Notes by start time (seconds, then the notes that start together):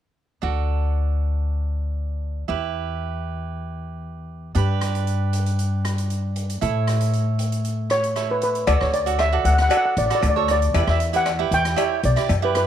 0.42 D2 D4 F#4 A4
2.48 E2 E4 G4 B4
4.55 G2 D4 G4 B4, closed hi-hat
4.81 cross-stick, closed hi-hat
4.95 closed hi-hat
5.07 closed hi-hat
5.33 closed hi-hat
5.46 closed hi-hat
5.59 closed hi-hat
5.85 cross-stick, closed hi-hat
5.98 closed hi-hat
6.10 closed hi-hat
6.36 closed hi-hat
6.50 closed hi-hat
6.61 A2 E4 A4 C#5, closed hi-hat
6.87 cross-stick, closed hi-hat
7.01 closed hi-hat
7.13 closed hi-hat
7.39 closed hi-hat
7.52 closed hi-hat
7.65 closed hi-hat
7.90 C#5, cross-stick, closed hi-hat
8.04 closed hi-hat
8.16 E4 A4 C#5, cross-stick, closed hi-hat
8.31 B4
8.42 B4, closed hi-hat
8.55 closed hi-hat
8.67 D2 F#4 A4 D5, closed hi-hat, cowbell
8.81 D2 C#5, cross-stick
8.93 D5, closed hi-hat
9.06 F#4 A4 D5, closed hi-hat
9.19 E5, cross-stick, closed hi-hat, cowbell
9.33 F#4 A4 D5
9.45 D2 F#5, closed hi-hat
9.54 F#5
9.58 F#5, cross-stick, closed hi-hat
9.69 F#4 A4 D5 F#5, closed hi-hat, cowbell
9.77 F#5
9.86 F#5
9.97 A1 D5, closed hi-hat
10.06 D5
10.10 F#4 A4 D5, cross-stick, closed hi-hat
10.15 D5
10.21 D2 D5, closed hi-hat, cowbell
10.29 D5
10.36 F#4 A4 C#5 D5
10.48 D5, cross-stick, closed hi-hat
10.62 closed hi-hat
10.74 E2 E4 G4 B4, closed hi-hat, cowbell
10.87 E2 E5, cross-stick
11.00 closed hi-hat
11.13 E4 G4 B4 F#5, closed hi-hat
11.26 cross-stick, closed hi-hat, cowbell
11.39 E4 G4 B4
11.51 E2 G5, closed hi-hat
11.65 cross-stick, closed hi-hat
11.76 E4 G4 C#5, closed hi-hat, cowbell
12.03 B1 D5, closed hi-hat
12.16 E4 G4 D5, cross-stick, closed hi-hat
12.29 F#2, closed hi-hat, cowbell
12.42 E4 G4 B4
12.55 B4, cross-stick, closed hi-hat